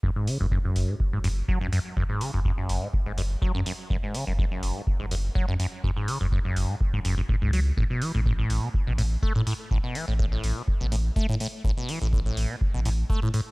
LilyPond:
<<
  \new Staff \with { instrumentName = "Acid bass" } { \clef bass \time 4/4 \key fis \minor \tempo 4 = 124 fis,16 gis,16 cis16 fis,16 fis,16 fis,8 gis,16 r16 gis,16 fis,16 r16 fis16 fis,16 fis,16 r16 | fis,16 gis,16 cis16 fis,16 fis,16 fis,8 gis,16 r16 gis,16 fis,16 r16 fis16 fis,16 fis,16 r16 | fis,16 gis,16 cis16 fis,16 fis,16 fis,8 gis,16 r16 gis,16 fis,16 r16 fis16 fis,16 fis,16 r16 | fis,16 gis,16 cis16 fis,16 fis,16 fis,8 gis,16 r16 gis,16 fis,16 fis,16 a,16 gis,16 fis16 r16 |
a,16 b,16 e16 a,16 a,16 a,8 b,16 r16 b,16 a,16 r16 a16 a,16 a,16 r16 | a,16 b,16 e16 a,16 a,16 a,8 b,16 r16 b,16 a,16 r16 a16 a,16 a,16 r16 | a,16 b,16 e16 a,16 a,16 a,8 b,16 r16 b,16 a,16 r16 a16 a,16 a,16 r16 | }
  \new Staff \with { instrumentName = "Sub bass" } { \clef bass \time 4/4 \key fis \minor fis,,16 r8 fis,,8 r16 fis,,16 r8 fis,,8 r8 fis,16 r8 | fis,,16 r8 fis,,8 r16 fis,,16 r8 fis,,8 r8 fis,16 r8 | fis,,16 r8 fis,,8 r16 fis,,16 r8 fis,,8 r8 fis,16 r8 | fis,,16 r8 fis,,8 r16 fis,,16 r8 fis,,8 r8 cis,8 r16 |
a,,16 r8 a,,8 r16 a,,16 r8 a,,8 r8 a,16 r8 | a,,16 r8 a,,8 r16 a,,16 r8 a,,8 r8 a,16 r8 | a,,16 r8 a,,8 r16 a,,16 r8 a,,8 r8 a,16 r8 | }
  \new DrumStaff \with { instrumentName = "Drums" } \drummode { \time 4/4 bd8 hho8 bd8 hho8 bd8 hho8 bd8 hho8 | bd8 hho8 bd8 hho8 bd8 hho8 bd8 hho8 | bd8 hho8 bd8 hho8 bd8 hho8 bd8 hho8 | bd8 hho8 bd8 hho8 bd16 bd16 hho8 bd8 hho8 |
bd8 hho8 bd8 hho8 bd8 hho8 bd8 hho8 | bd8 hho8 bd8 hho8 bd8 hho8 bd8 hho8 | bd8 hho8 bd8 hho8 bd8 hho8 bd8 hho8 | }
>>